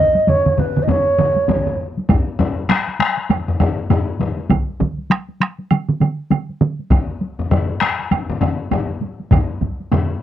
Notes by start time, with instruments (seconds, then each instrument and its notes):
Already playing: shakuhachi D#5
0.15 taiko high
0.27 shakuhachi C#5, taiko low-mid, taiko mid, taiko high
0.46 taiko low-mid, taiko mid
0.57 shakuhachi B4, taiko low-mid, taiko mid, taiko high
0.76 taiko low-mid, taiko mid
0.82 shakuhachi D#5
0.87 shakuhachi C#5, taiko low-mid, taiko mid, taiko high
1.18 taiko low-mid, taiko mid
1.36 taiko high
1.48 taiko, taiko low-mid, taiko mid, taiko high
1.67 taiko low-mid, taiko mid
1.97 taiko high
2.09 taiko, taiko low-mid, taiko high, high woodblock
2.28 taiko high
2.39 taiko low-mid, taiko high
2.58 taiko high
2.69 taiko rim, taiko high, high woodblock
2.87 taiko high
2.99 taiko rim, taiko high
3.18 taiko high
3.30 taiko low-mid, taiko high, high woodblock
3.48 taiko low-mid, taiko high
3.60 taiko low-mid, taiko high, high woodblock
3.90 taiko low-mid, taiko high, high woodblock
4.08 taiko high
4.20 taiko low-mid, taiko high
4.38 taiko high
4.50 taiko, taiko mid, taiko high, high woodblock
4.68 taiko high
4.80 taiko, taiko mid, taiko high
4.98 taiko high
5.10 taiko rim, taiko high, high woodblock
5.28 taiko high
5.40 taiko rim, taiko high
5.59 taiko high
5.71 taiko mid, taiko high, high woodblock
5.89 taiko mid, taiko high
6.01 taiko mid, taiko high, high woodblock
6.30 taiko mid, taiko high, high woodblock
6.49 taiko high
6.61 taiko mid, taiko high
6.79 taiko high
6.90 taiko, taiko low-mid, taiko high, high woodblock
7.10 taiko high
7.21 taiko high
7.39 taiko low-mid
7.51 taiko low-mid, taiko high, high woodblock
7.69 taiko high
7.81 taiko rim, taiko high
7.99 taiko high
8.11 taiko low-mid, taiko high, high woodblock
8.30 taiko low-mid, taiko high
8.41 taiko low-mid, taiko high, high woodblock
8.71 taiko low-mid, taiko high, high woodblock
8.89 taiko high
9.01 taiko high
9.19 taiko high
9.31 taiko, taiko low-mid, taiko mid, taiko high, high woodblock
9.50 taiko high
9.61 taiko, taiko high
9.80 taiko high
9.92 taiko low-mid, taiko mid, taiko high, high woodblock
10.10 taiko high